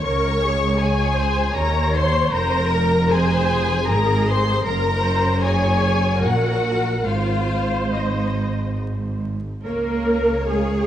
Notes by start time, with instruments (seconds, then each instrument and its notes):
0.05 cello section C#2, double bass section C#2, viola section A#4, violin section C#5 C#6
0.43 viola section G#4
0.80 violin section G#4 G#5, viola section C#5
1.18 viola section C5
1.55 cello section D#2, double bass section D#2, violin section A#4 A#5, viola section C#5
1.94 violin section C5 C6
2.31 double bass section F1, cello section F2, violin section A#4 A#5, viola section C5
2.71 viola section A#4
3.09 violin section G#4 G#5, viola section C5
3.88 double bass section G#1, cello section G#2, viola section G#4, violin section A#4 A#5
4.27 violin section C5 C6
4.64 double bass section F#1, cello section F#2, viola section A#4, violin section A#4 A#5
5.02 viola section C5
5.42 violin section G#4 G#5, viola section C#5
6.21 double bass section A#1, cello section A#2, violin section F#4 F#5, viola section A#4
7.04 double bass section G#1, cello section G#2, violin section F4 F5, viola section C5
7.92 violin section D#4 D#5
9.65 double bass section C#2, cello section A#3, viola section A#4, violin section C#5 F5
10.52 cello section G#3, viola section G#4